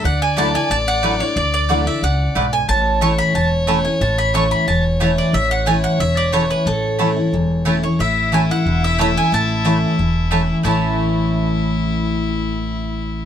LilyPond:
<<
  \new Staff \with { instrumentName = "Mandolin" } { \time 4/4 \key a \major \tempo 4 = 181 fis''8 gis''8 a''8 gis''8 a''8 fis''4 cis''8 | d''8 d''4 e''8 fis''4. gis''8 | a''4 cis'''8 b''8 a''8 r4 gis''8 | a''8 b''8 cis'''8 b''8 a''8 r4 d''8 |
e''8 fis''8 gis''8 fis''8 e''8 d''8 cis''8 b'8 | a'2. r8 cis''8 | e''4 gis''8 fis''4 e''8 e''8 gis''8 | a''2. r4 |
a''1~ | a''1 | }
  \new Staff \with { instrumentName = "Fiddle" } { \time 4/4 \key a \major d''1~ | d''2.~ d''8 r8 | cis''1~ | cis''1 |
cis''1~ | cis''2.~ cis''8 r8 | e'1~ | e'1 |
e'1~ | e'1 | }
  \new Staff \with { instrumentName = "Mandolin" } { \time 4/4 \key a \major r4 <a e' d'' fis''>8 r4. <a e' d'' fis''>8 r8 | r4 <a e' d'' fis''>8 r4. <a e' d'' fis''>8 r8 | r4 <a e' cis'' a''>8 r4. <a e' cis'' a''>8 r8 | r4 <a e' cis'' a''>8 r4. <a e' cis'' a''>8 r8 |
r4 <a e' cis'' a''>8 r4. <a e' cis'' a''>8 r8 | r4 <a e' cis'' a''>8 r4. <a e' cis'' a''>8 r8 | r4 <a e' cis'' a''>8 r4. <a e' cis'' a''>8 r8 | r4 <a e' cis'' a''>8 r4. <a e' cis'' a''>8 r8 |
<a e' cis'' a''>1~ | <a e' cis'' a''>1 | }
  \new Staff \with { instrumentName = "Steel-string acoustic guitar" } { \time 4/4 \key a \major << { r4 <fis a d' e'>8 e'8 r4 <fis a d' e'>8 <d' e'>8 | r4 <fis a d' e'>8 <d' e'>8 r2 | r4 <e a cis' e'>4 r4 <e a cis' e'>8 <cis' e'>8 | r4 <e a cis' e'>4 r4 <e a cis' e'>4 |
r4 <e a cis' e'>4 r4 <e a cis' e'>4 | r4 <e a cis' e'>8 <cis' e'>8 r4 <e a cis' e'>8 <cis' e'>8 | r4 <e a cis' e'>8 <cis' e'>8 r4 <e a cis' e'>8 cis'8 | r4 <e a cis' e'>4 r4 <e a cis' e'>4 |
<a, e a cis' e'>1~ | <a, e a cis' e'>1 | } \\ { d2 a,2 | d2 cis4 gis,4 | a,2 e,2 | a,2 e,2 |
a,2 e,2 | a,2 e,2 | a,2 r2 | a,2 r2 |
r1 | r1 | } >> }
  \new Staff \with { instrumentName = "Upright bass" } { \clef bass \time 4/4 \key a \major d,2 a,,2 | d,2 cis,4 b,,4 | a,,2 e,,2 | a,,2 e,,2 |
a,,2 e,,2 | a,,2 e,,2 | a,,2 e,,2 | a,,2 e,,2 |
a,,1~ | a,,1 | }
>>